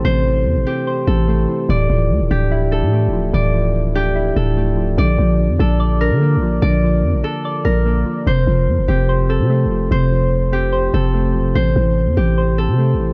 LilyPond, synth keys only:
\new Staff \with { instrumentName = "Synth keys" } { \time 4/4 \key a \phrygian \tempo 4 = 146 <c e a c' c''>8 e4 c'8 c''8 c'8 a8 e8 | e8 f4 d'8 e'8 d'8 a8 f8 | e8 f4 d'8 e'8 d'8 a8 f8 | d8 f4 d'8 d''8 d'8 bes8 f8 |
d8 f4 d'8 d''8 d'8 bes8 f8 | c8 f4 c'8 c''8 c'8 a8 f8 | c8 f4 c'8 c''8 c'8 a8 f8 | c8 e4 c'8 c''8 c'8 a8 e8 | }